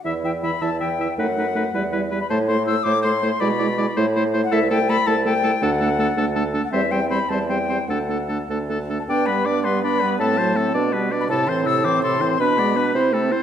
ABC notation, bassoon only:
X:1
M:6/8
L:1/8
Q:3/8=108
K:Em
V:1 name="Bassoon" clef=bass
E,,3 E,,3 | F,,3 E,,3 | A,,3 A,,3 | B,,3 A,,3 |
[K:G] C,,3 C,,3 | D,,3 D,,3 | E,,3 E,,3 | D,,3 D,,3 |
G,,6 | A,,3 B,,3 | A,,6 | B,,3 C,3 |]